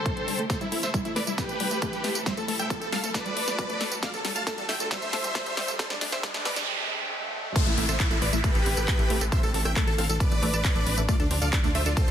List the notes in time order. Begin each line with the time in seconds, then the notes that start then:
Already playing: C3 D3 G3 D4 G4 A4 C5, riser
0.06 A3, kick, closed hi-hat
0.17 G1, closed hi-hat
0.28 G1 G3, open hi-hat
0.39 G1 A3, closed hi-hat
0.50 E3 A3 E4 A4 C5, kick, snare, closed hi-hat, tambourine
0.61 A1 G3 E4, closed hi-hat, tambourine
0.72 A1 A3 E4, open hi-hat
0.83 A1 C5 E5, snare, tambourine
0.94 G3 E4, kick, closed hi-hat, tambourine
1.05 A1 A3 E4, closed hi-hat, tambourine
1.16 A1 A3 B4 D5, snare, open hi-hat
1.27 A1 G3 E4, closed hi-hat, tambourine
1.38 A3 G4 B4, kick, snare, closed hi-hat, tambourine
1.49 A1, closed hi-hat, tambourine
1.60 A1 G3, open hi-hat
1.71 A1 A3, closed hi-hat, tambourine
1.82 A3, kick, closed hi-hat, tambourine
1.93 A1 G3, closed hi-hat, tambourine
2.04 A1 A3, snare, open hi-hat
2.15 A1, closed hi-hat, tambourine
2.26 G3 C5 E5, kick, snare, closed hi-hat, tambourine
2.37 A1 A3 A4, closed hi-hat, tambourine
2.48 A1 A3 A4, open hi-hat
2.59 A1 G3 E5 G5, closed hi-hat, tambourine
2.70 A3 A4, kick, closed hi-hat, tambourine
2.81 A1 A4, closed hi-hat, tambourine
2.92 A1 G3 A4 F5, snare, open hi-hat
3.03 A1 A3 A4, closed hi-hat, tambourine
3.14 A3 B4 D5, kick, snare, closed hi-hat, tambourine
3.25 A1 G3, closed hi-hat, tambourine
3.36 A1 A3, open hi-hat
3.48 A1, snare, closed hi-hat, tambourine
3.59 G3, kick, closed hi-hat, tambourine
3.70 A1 A3, closed hi-hat, tambourine
3.81 A1 A3, snare, open hi-hat
3.92 A1 G3, closed hi-hat, tambourine
4.02 D3 F3 A3 F4 D5 F5, kick, snare, closed hi-hat, tambourine
4.14 D2 A4, closed hi-hat, tambourine
4.25 D2 G3 A4, snare, open hi-hat
4.36 D2 A3 F5 A5, closed hi-hat, tambourine
4.47 A3 A4, kick, snare, closed hi-hat, tambourine
4.58 D2 G3 A4, closed hi-hat, tambourine
4.69 D2 A3 E5 G5, snare, open hi-hat
4.80 D2 A4, tambourine
4.91 G3 C5 E5, kick, snare, closed hi-hat, tambourine
5.02 D2 A3, closed hi-hat, tambourine
5.13 D2 A3, snare, open hi-hat
5.24 D2 G3, closed hi-hat, tambourine
5.35 A3, kick, snare, closed hi-hat, tambourine
5.46 D2, closed hi-hat, tambourine
5.57 D2 G3, snare, open hi-hat
5.68 D2 A3, closed hi-hat, tambourine
5.79 C3 D3 G3 A3 D4 G4 A4 C5, kick, snare, closed hi-hat, tambourine, noise sweep
5.90 G1 G3 D4, snare, closed hi-hat, tambourine
6.01 G1 A3 D4, snare, open hi-hat
6.12 G1 C5 E5, snare, closed hi-hat, tambourine
6.23 G3 D4, kick, snare, closed hi-hat, tambourine
6.34 G1 A3 D4, snare, closed hi-hat, tambourine
6.45 G1 A3 B4 D5, kick, snare, open hi-hat
6.56 G1 G3 D4, snare, closed hi-hat, tambourine
7.56 A2 C3 E3 C4 E4 A4 C5, kick, closed hi-hat, crash, tambourine, downlifter
7.67 A1 A3 E4, closed hi-hat, tambourine
7.78 A1 A3 E4, open hi-hat
7.89 A1 A4 C5 E5, closed hi-hat, tambourine
8.00 C4 E4, kick, clap, closed hi-hat, tambourine
8.11 A1 E4 A4, closed hi-hat, tambourine
8.22 A1 B4 D5, open hi-hat
8.33 A1 A3 E4, closed hi-hat, tambourine
8.44 A3 G4 B4, kick, closed hi-hat, tambourine
8.55 A1 A4, closed hi-hat, tambourine
8.66 A1 C4, open hi-hat
8.77 A1 A4, closed hi-hat, tambourine
8.88 kick, clap, closed hi-hat, tambourine
8.99 A1 A3, closed hi-hat, tambourine
9.10 A1 A3, open hi-hat
9.21 A1 A4, closed hi-hat, tambourine
9.32 C4 D4 C5 E5, kick, closed hi-hat, tambourine
9.43 A1 A4, closed hi-hat, tambourine
9.54 A1 A4, open hi-hat
9.65 A1 A3 E5 G5, cross-stick, closed hi-hat, tambourine
9.76 A3 A4, kick, clap, closed hi-hat, tambourine
9.87 A1 A4, closed hi-hat, tambourine
9.98 A1 C4 A4 F5, open hi-hat
10.09 A1 A4, tambourine
10.20 B4 D5, kick, closed hi-hat, tambourine
10.31 A1 A3, closed hi-hat, tambourine
10.42 A1 A3, open hi-hat
10.53 A1 A4, closed hi-hat, tambourine
10.64 C4, kick, clap, closed hi-hat, tambourine
10.76 A1 A4, closed hi-hat, tambourine
10.87 A1, open hi-hat
10.98 A1 A3, closed hi-hat, tambourine
11.09 D3 F3 A3 F4 D5, kick, closed hi-hat, tambourine
11.20 D2 D4 A4, closed hi-hat, tambourine
11.31 D2 C4 D4, open hi-hat
11.42 D2 A4 D5 F5, closed hi-hat, tambourine
11.53 D4, kick, clap, closed hi-hat, tambourine
11.64 D2 A3 D4, closed hi-hat, tambourine
11.75 D2 A3 C5 E5, open hi-hat
11.86 D2 D4 A4, closed hi-hat, tambourine
11.97 C4 A4 C5, kick, closed hi-hat, tambourine
12.08 D2